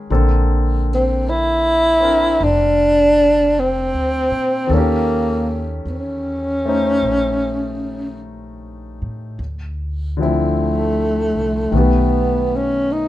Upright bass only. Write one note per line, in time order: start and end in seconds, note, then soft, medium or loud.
0.10 2.37 A#1 medium
2.41 3.90 F1 medium
3.94 4.30 D2 soft
4.31 4.68 A#2 medium
4.70 5.82 D#2 medium
5.86 6.99 E2 medium
7.03 8.97 A#1 medium
9.02 9.37 A2 soft
9.39 11.31 D2 medium
11.35 11.70 C2 soft
11.72 13.08 B1 medium